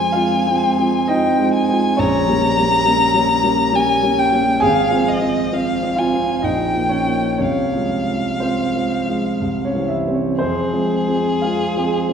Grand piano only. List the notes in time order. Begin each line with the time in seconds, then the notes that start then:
Already playing: F2 G#3 C4 F4 C5
0.12 G#3 C4 F4 F5
0.47 G#3 C4 F4
0.77 G#3 C4 F4
1.08 G#3 C4 D#4 F4 D#5
1.39 G#3 C4 F4
1.69 G#3 C4 F4
1.97 A#1 C#4 C#5
2.28 G3 A#3 C#4
2.57 G3 A#3 C#4
2.86 G3 A#3 C#4
3.14 G3 A#3 C#4
3.44 G3 A#3 C#4
3.73 G3 A#3 C#4
4.03 G3 A#3 C#4
4.33 G3 A#3 C#4
4.60 G#1 G#4 G#5
4.91 F3 C4
5.21 F3 C4
5.52 F3 C4
5.83 F3 C4
5.96 F4 F5
6.13 F3 C4
6.42 A#1 D#4 D#5
6.75 F3 A#3
6.89 C#4 C#5
7.07 F3 A#3
7.38 C2 C#4 C#5
7.75 F3 G#3
8.09 F3 G#3
8.40 F3 G#3 C4 C5
8.76 F3 G#3
9.09 F3 G#3
9.42 C2
9.65 C#4 C#5
9.75 E3 G3 C4
9.89 E4 E5
10.07 E3 G3 C4
10.14 C#4 C#5
10.39 F2 C4 C5
10.73 F3 G#3 C4
11.08 F3 G#3 C4
11.42 F3 G#3 C4 F4 F5
11.77 F3 G#3 C4
12.09 F3 G#3 C4